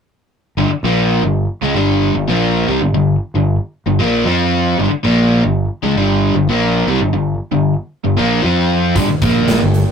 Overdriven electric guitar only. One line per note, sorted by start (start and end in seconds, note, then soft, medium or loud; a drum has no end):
0.58 0.70 G2 medium
0.58 0.70 D3 medium
0.71 muted overdriven electric guitar stroke medium
0.84 1.23 A#2 medium
0.84 1.23 F3 medium
0.84 1.23 A#3 medium
1.24 1.44 G2 medium
1.24 1.44 D3 medium
1.62 1.74 C#3 medium
1.62 1.75 G#3 medium
1.75 2.14 G2 medium
1.75 2.14 D3 medium
1.75 2.15 G3 medium
2.15 2.28 G2 medium
2.15 2.27 D3 medium
2.28 2.66 A#2 medium
2.28 2.67 F3 medium
2.28 2.67 A#3 medium
2.68 2.80 C3 medium
2.68 2.80 G3 medium
2.82 2.93 G2 medium
2.82 2.93 D3 medium
2.94 3.15 G2 medium
2.94 3.15 D3 medium
3.35 3.55 G2 medium
3.35 3.55 D3 medium
3.86 3.99 G2 medium
3.86 3.99 D3 medium
3.99 4.24 A#2 medium
3.99 4.24 F3 medium
3.99 4.25 A#3 medium
4.25 4.76 F3 medium
4.25 4.77 C4 medium
4.25 4.77 F4 medium
4.78 4.89 G2 medium
4.78 4.91 D3 medium
4.91 muted overdriven electric guitar stroke medium
5.04 5.42 A#2 medium
5.04 5.42 F3 medium
5.04 5.43 A#3 medium
5.43 5.64 G2 medium
5.43 5.64 D3 medium
5.83 5.95 C#3 medium
5.83 5.95 G#3 medium
5.96 6.34 G2 medium
5.96 6.35 D3 medium
5.96 6.35 G3 medium
6.36 6.48 G2 medium
6.36 6.48 D3 medium
6.49 6.87 A#2 medium
6.49 6.87 F3 medium
6.49 6.87 A#3 medium
6.87 6.99 C3 medium
6.87 7.00 G3 medium
7.01 7.12 G2 medium
7.01 7.12 D3 medium
7.13 7.34 G2 medium
7.13 7.34 D3 medium
7.52 7.73 G2 medium
7.52 7.73 D3 medium
8.04 8.17 G2 medium
8.04 8.17 D3 medium
8.17 8.42 A#2 medium
8.17 8.41 F3 medium
8.17 8.43 A#3 medium
8.43 8.94 F3 medium
8.43 8.95 C4 medium
8.43 8.95 F4 medium
8.95 9.08 G2 medium
8.95 9.08 D3 medium
9.09 muted overdriven electric guitar stroke medium
9.22 9.60 A#2 medium
9.22 9.61 F3 medium
9.22 9.61 A#3 medium
9.61 9.82 G2 medium
9.61 9.82 D3 medium